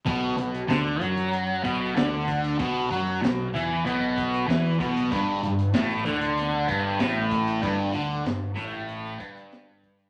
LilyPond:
<<
  \new Staff \with { instrumentName = "Distorted electric guitar" } { \clef bass \time 4/4 \key b \minor \tempo 4 = 95 b,8 b,8 d8 fis4 b,8 d4 | b,8 fis8 b,8 e8 b,4 e8 b,8 | g,8 g,8 a,8 d4 g,8 a,4 | g,8 d8 g,8 a,4 g,4. | }
  \new Staff \with { instrumentName = "Picked electric bass" } { \clef bass \time 4/4 \key b \minor b,,8 b,,8 d,8 fis,4 b,,8 d,4 | b,,8 fis,8 b,,8 e,8 b,,4 e,8 b,,8 | g,,8 g,,8 a,,8 d,4 g,,8 a,,4 | g,,8 d,8 g,,8 a,,4 g,,4. | }
  \new DrumStaff \with { instrumentName = "Drums" } \drummode { \time 4/4 <hh bd>8 hh16 hh16 <hh sn>8 hh16 hh16 hh8 <hh bd>8 <hh sn>8 <hh bd>16 hh16 | <hh bd>8 hh8 <hh sn>8 hh8 hh8 <hh bd>16 hh16 <hh sn>8 <hh bd>16 hh16 | <hh bd>8 hh16 hh16 <hh sn>8 hh16 hh16 <hh sn>8 <hh bd>8 <hh sn>8 <hh bd>16 hh16 | <hh bd>8 hh8 <hh sn>8 hh8 hh8 <hh bd>16 hh16 <hh sn>8 <hh bd>16 hh16 | }
>>